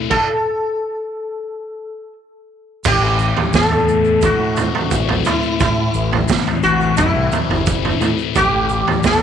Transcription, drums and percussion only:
0, 0, Header, 1, 2, 480
1, 0, Start_track
1, 0, Tempo, 687128
1, 75, Time_signature, 4, 2, 24, 8
1, 6444, End_track
2, 0, Start_track
2, 0, Title_t, "Drums"
2, 75, Note_on_c, 9, 36, 94
2, 76, Note_on_c, 9, 49, 78
2, 145, Note_off_c, 9, 36, 0
2, 146, Note_off_c, 9, 49, 0
2, 1985, Note_on_c, 9, 82, 90
2, 1992, Note_on_c, 9, 36, 112
2, 1993, Note_on_c, 9, 43, 84
2, 1993, Note_on_c, 9, 49, 108
2, 2055, Note_off_c, 9, 82, 0
2, 2062, Note_off_c, 9, 36, 0
2, 2063, Note_off_c, 9, 43, 0
2, 2063, Note_off_c, 9, 49, 0
2, 2227, Note_on_c, 9, 82, 68
2, 2296, Note_off_c, 9, 82, 0
2, 2352, Note_on_c, 9, 43, 77
2, 2421, Note_off_c, 9, 43, 0
2, 2468, Note_on_c, 9, 82, 96
2, 2473, Note_on_c, 9, 36, 107
2, 2482, Note_on_c, 9, 38, 80
2, 2538, Note_off_c, 9, 82, 0
2, 2543, Note_off_c, 9, 36, 0
2, 2551, Note_off_c, 9, 38, 0
2, 2596, Note_on_c, 9, 43, 76
2, 2666, Note_off_c, 9, 43, 0
2, 2712, Note_on_c, 9, 82, 64
2, 2782, Note_off_c, 9, 82, 0
2, 2825, Note_on_c, 9, 82, 27
2, 2895, Note_off_c, 9, 82, 0
2, 2945, Note_on_c, 9, 82, 101
2, 2953, Note_on_c, 9, 36, 99
2, 2954, Note_on_c, 9, 43, 81
2, 3015, Note_off_c, 9, 82, 0
2, 3023, Note_off_c, 9, 36, 0
2, 3024, Note_off_c, 9, 43, 0
2, 3189, Note_on_c, 9, 82, 76
2, 3192, Note_on_c, 9, 43, 79
2, 3258, Note_off_c, 9, 82, 0
2, 3262, Note_off_c, 9, 43, 0
2, 3317, Note_on_c, 9, 43, 76
2, 3387, Note_off_c, 9, 43, 0
2, 3429, Note_on_c, 9, 82, 99
2, 3432, Note_on_c, 9, 36, 101
2, 3498, Note_off_c, 9, 82, 0
2, 3502, Note_off_c, 9, 36, 0
2, 3553, Note_on_c, 9, 43, 89
2, 3623, Note_off_c, 9, 43, 0
2, 3666, Note_on_c, 9, 82, 82
2, 3677, Note_on_c, 9, 43, 88
2, 3736, Note_off_c, 9, 82, 0
2, 3747, Note_off_c, 9, 43, 0
2, 3789, Note_on_c, 9, 82, 28
2, 3859, Note_off_c, 9, 82, 0
2, 3910, Note_on_c, 9, 82, 100
2, 3916, Note_on_c, 9, 36, 110
2, 3919, Note_on_c, 9, 43, 87
2, 3980, Note_off_c, 9, 82, 0
2, 3986, Note_off_c, 9, 36, 0
2, 3989, Note_off_c, 9, 43, 0
2, 4148, Note_on_c, 9, 82, 76
2, 4218, Note_off_c, 9, 82, 0
2, 4279, Note_on_c, 9, 43, 74
2, 4349, Note_off_c, 9, 43, 0
2, 4387, Note_on_c, 9, 82, 107
2, 4398, Note_on_c, 9, 36, 118
2, 4407, Note_on_c, 9, 38, 80
2, 4457, Note_off_c, 9, 82, 0
2, 4468, Note_off_c, 9, 36, 0
2, 4477, Note_off_c, 9, 38, 0
2, 4522, Note_on_c, 9, 43, 76
2, 4592, Note_off_c, 9, 43, 0
2, 4631, Note_on_c, 9, 82, 74
2, 4701, Note_off_c, 9, 82, 0
2, 4754, Note_on_c, 9, 82, 29
2, 4823, Note_off_c, 9, 82, 0
2, 4870, Note_on_c, 9, 82, 101
2, 4879, Note_on_c, 9, 36, 101
2, 4879, Note_on_c, 9, 43, 80
2, 4940, Note_off_c, 9, 82, 0
2, 4948, Note_off_c, 9, 36, 0
2, 4949, Note_off_c, 9, 43, 0
2, 5113, Note_on_c, 9, 82, 79
2, 5120, Note_on_c, 9, 43, 80
2, 5182, Note_off_c, 9, 82, 0
2, 5190, Note_off_c, 9, 43, 0
2, 5243, Note_on_c, 9, 43, 81
2, 5313, Note_off_c, 9, 43, 0
2, 5352, Note_on_c, 9, 82, 101
2, 5359, Note_on_c, 9, 36, 107
2, 5422, Note_off_c, 9, 82, 0
2, 5429, Note_off_c, 9, 36, 0
2, 5483, Note_on_c, 9, 43, 82
2, 5553, Note_off_c, 9, 43, 0
2, 5596, Note_on_c, 9, 82, 80
2, 5599, Note_on_c, 9, 43, 84
2, 5666, Note_off_c, 9, 82, 0
2, 5669, Note_off_c, 9, 43, 0
2, 5716, Note_on_c, 9, 82, 30
2, 5786, Note_off_c, 9, 82, 0
2, 5834, Note_on_c, 9, 82, 97
2, 5838, Note_on_c, 9, 36, 106
2, 5838, Note_on_c, 9, 43, 82
2, 5904, Note_off_c, 9, 82, 0
2, 5908, Note_off_c, 9, 36, 0
2, 5908, Note_off_c, 9, 43, 0
2, 6071, Note_on_c, 9, 82, 74
2, 6141, Note_off_c, 9, 82, 0
2, 6200, Note_on_c, 9, 43, 77
2, 6270, Note_off_c, 9, 43, 0
2, 6310, Note_on_c, 9, 82, 95
2, 6316, Note_on_c, 9, 36, 113
2, 6325, Note_on_c, 9, 38, 75
2, 6380, Note_off_c, 9, 82, 0
2, 6386, Note_off_c, 9, 36, 0
2, 6395, Note_off_c, 9, 38, 0
2, 6444, End_track
0, 0, End_of_file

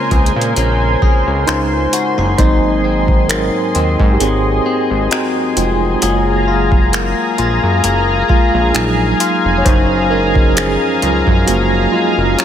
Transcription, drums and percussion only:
0, 0, Header, 1, 2, 480
1, 0, Start_track
1, 0, Tempo, 909091
1, 1259, Time_signature, 4, 2, 24, 8
1, 6572, End_track
2, 0, Start_track
2, 0, Title_t, "Drums"
2, 59, Note_on_c, 9, 36, 90
2, 59, Note_on_c, 9, 42, 52
2, 112, Note_off_c, 9, 36, 0
2, 112, Note_off_c, 9, 42, 0
2, 139, Note_on_c, 9, 42, 54
2, 192, Note_off_c, 9, 42, 0
2, 219, Note_on_c, 9, 42, 50
2, 272, Note_off_c, 9, 42, 0
2, 298, Note_on_c, 9, 42, 68
2, 351, Note_off_c, 9, 42, 0
2, 540, Note_on_c, 9, 36, 91
2, 592, Note_off_c, 9, 36, 0
2, 779, Note_on_c, 9, 42, 54
2, 786, Note_on_c, 9, 26, 98
2, 832, Note_off_c, 9, 42, 0
2, 839, Note_off_c, 9, 26, 0
2, 1019, Note_on_c, 9, 42, 78
2, 1072, Note_off_c, 9, 42, 0
2, 1259, Note_on_c, 9, 36, 116
2, 1259, Note_on_c, 9, 42, 76
2, 1312, Note_off_c, 9, 36, 0
2, 1312, Note_off_c, 9, 42, 0
2, 1628, Note_on_c, 9, 36, 84
2, 1680, Note_off_c, 9, 36, 0
2, 1739, Note_on_c, 9, 42, 73
2, 1746, Note_on_c, 9, 26, 106
2, 1792, Note_off_c, 9, 42, 0
2, 1799, Note_off_c, 9, 26, 0
2, 1979, Note_on_c, 9, 42, 62
2, 2032, Note_off_c, 9, 42, 0
2, 2110, Note_on_c, 9, 36, 89
2, 2163, Note_off_c, 9, 36, 0
2, 2220, Note_on_c, 9, 42, 66
2, 2273, Note_off_c, 9, 42, 0
2, 2699, Note_on_c, 9, 42, 57
2, 2706, Note_on_c, 9, 26, 108
2, 2752, Note_off_c, 9, 42, 0
2, 2759, Note_off_c, 9, 26, 0
2, 2940, Note_on_c, 9, 42, 77
2, 2993, Note_off_c, 9, 42, 0
2, 3178, Note_on_c, 9, 42, 75
2, 3231, Note_off_c, 9, 42, 0
2, 3547, Note_on_c, 9, 36, 88
2, 3600, Note_off_c, 9, 36, 0
2, 3660, Note_on_c, 9, 42, 70
2, 3666, Note_on_c, 9, 26, 104
2, 3712, Note_off_c, 9, 42, 0
2, 3719, Note_off_c, 9, 26, 0
2, 3899, Note_on_c, 9, 42, 58
2, 3951, Note_off_c, 9, 42, 0
2, 4138, Note_on_c, 9, 42, 67
2, 4191, Note_off_c, 9, 42, 0
2, 4379, Note_on_c, 9, 36, 87
2, 4432, Note_off_c, 9, 36, 0
2, 4618, Note_on_c, 9, 42, 56
2, 4625, Note_on_c, 9, 26, 109
2, 4670, Note_off_c, 9, 42, 0
2, 4677, Note_off_c, 9, 26, 0
2, 4859, Note_on_c, 9, 42, 76
2, 4912, Note_off_c, 9, 42, 0
2, 5099, Note_on_c, 9, 36, 114
2, 5099, Note_on_c, 9, 42, 71
2, 5152, Note_off_c, 9, 36, 0
2, 5152, Note_off_c, 9, 42, 0
2, 5468, Note_on_c, 9, 36, 87
2, 5520, Note_off_c, 9, 36, 0
2, 5580, Note_on_c, 9, 42, 72
2, 5587, Note_on_c, 9, 26, 104
2, 5633, Note_off_c, 9, 42, 0
2, 5639, Note_off_c, 9, 26, 0
2, 5821, Note_on_c, 9, 42, 65
2, 5873, Note_off_c, 9, 42, 0
2, 5950, Note_on_c, 9, 36, 85
2, 6003, Note_off_c, 9, 36, 0
2, 6059, Note_on_c, 9, 42, 70
2, 6112, Note_off_c, 9, 42, 0
2, 6540, Note_on_c, 9, 42, 54
2, 6547, Note_on_c, 9, 26, 105
2, 6572, Note_off_c, 9, 26, 0
2, 6572, Note_off_c, 9, 42, 0
2, 6572, End_track
0, 0, End_of_file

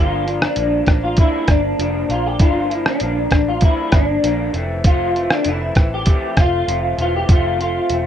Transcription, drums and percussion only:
0, 0, Header, 1, 2, 480
1, 0, Start_track
1, 0, Tempo, 611621
1, 1883, Time_signature, 4, 2, 24, 8
1, 6329, End_track
2, 0, Start_track
2, 0, Title_t, "Drums"
2, 217, Note_on_c, 9, 42, 39
2, 296, Note_off_c, 9, 42, 0
2, 330, Note_on_c, 9, 37, 85
2, 408, Note_off_c, 9, 37, 0
2, 439, Note_on_c, 9, 42, 58
2, 518, Note_off_c, 9, 42, 0
2, 679, Note_on_c, 9, 42, 37
2, 686, Note_on_c, 9, 36, 72
2, 690, Note_on_c, 9, 37, 69
2, 757, Note_off_c, 9, 42, 0
2, 764, Note_off_c, 9, 36, 0
2, 768, Note_off_c, 9, 37, 0
2, 916, Note_on_c, 9, 42, 64
2, 925, Note_on_c, 9, 36, 95
2, 994, Note_off_c, 9, 42, 0
2, 1004, Note_off_c, 9, 36, 0
2, 1159, Note_on_c, 9, 42, 47
2, 1162, Note_on_c, 9, 37, 64
2, 1163, Note_on_c, 9, 36, 79
2, 1237, Note_off_c, 9, 42, 0
2, 1241, Note_off_c, 9, 37, 0
2, 1242, Note_off_c, 9, 36, 0
2, 1409, Note_on_c, 9, 42, 66
2, 1487, Note_off_c, 9, 42, 0
2, 1647, Note_on_c, 9, 42, 39
2, 1725, Note_off_c, 9, 42, 0
2, 1879, Note_on_c, 9, 42, 70
2, 1882, Note_on_c, 9, 36, 98
2, 1958, Note_off_c, 9, 42, 0
2, 1961, Note_off_c, 9, 36, 0
2, 2129, Note_on_c, 9, 42, 37
2, 2208, Note_off_c, 9, 42, 0
2, 2244, Note_on_c, 9, 37, 86
2, 2322, Note_off_c, 9, 37, 0
2, 2354, Note_on_c, 9, 42, 62
2, 2432, Note_off_c, 9, 42, 0
2, 2595, Note_on_c, 9, 42, 39
2, 2602, Note_on_c, 9, 36, 65
2, 2606, Note_on_c, 9, 37, 74
2, 2673, Note_off_c, 9, 42, 0
2, 2681, Note_off_c, 9, 36, 0
2, 2685, Note_off_c, 9, 37, 0
2, 2832, Note_on_c, 9, 42, 62
2, 2843, Note_on_c, 9, 36, 93
2, 2910, Note_off_c, 9, 42, 0
2, 2921, Note_off_c, 9, 36, 0
2, 3076, Note_on_c, 9, 42, 44
2, 3079, Note_on_c, 9, 37, 76
2, 3081, Note_on_c, 9, 36, 86
2, 3154, Note_off_c, 9, 42, 0
2, 3157, Note_off_c, 9, 37, 0
2, 3160, Note_off_c, 9, 36, 0
2, 3327, Note_on_c, 9, 42, 72
2, 3405, Note_off_c, 9, 42, 0
2, 3563, Note_on_c, 9, 42, 43
2, 3641, Note_off_c, 9, 42, 0
2, 3800, Note_on_c, 9, 42, 78
2, 3803, Note_on_c, 9, 36, 106
2, 3879, Note_off_c, 9, 42, 0
2, 3881, Note_off_c, 9, 36, 0
2, 4050, Note_on_c, 9, 42, 38
2, 4129, Note_off_c, 9, 42, 0
2, 4163, Note_on_c, 9, 37, 83
2, 4242, Note_off_c, 9, 37, 0
2, 4273, Note_on_c, 9, 42, 64
2, 4352, Note_off_c, 9, 42, 0
2, 4515, Note_on_c, 9, 42, 43
2, 4522, Note_on_c, 9, 36, 75
2, 4526, Note_on_c, 9, 37, 64
2, 4593, Note_off_c, 9, 42, 0
2, 4601, Note_off_c, 9, 36, 0
2, 4605, Note_off_c, 9, 37, 0
2, 4754, Note_on_c, 9, 42, 74
2, 4763, Note_on_c, 9, 36, 87
2, 4832, Note_off_c, 9, 42, 0
2, 4842, Note_off_c, 9, 36, 0
2, 4998, Note_on_c, 9, 42, 44
2, 5001, Note_on_c, 9, 36, 74
2, 5001, Note_on_c, 9, 37, 70
2, 5076, Note_off_c, 9, 42, 0
2, 5080, Note_off_c, 9, 36, 0
2, 5080, Note_off_c, 9, 37, 0
2, 5247, Note_on_c, 9, 42, 69
2, 5325, Note_off_c, 9, 42, 0
2, 5482, Note_on_c, 9, 42, 43
2, 5561, Note_off_c, 9, 42, 0
2, 5720, Note_on_c, 9, 42, 79
2, 5721, Note_on_c, 9, 36, 102
2, 5798, Note_off_c, 9, 42, 0
2, 5800, Note_off_c, 9, 36, 0
2, 5969, Note_on_c, 9, 42, 41
2, 6048, Note_off_c, 9, 42, 0
2, 6196, Note_on_c, 9, 42, 62
2, 6275, Note_off_c, 9, 42, 0
2, 6329, End_track
0, 0, End_of_file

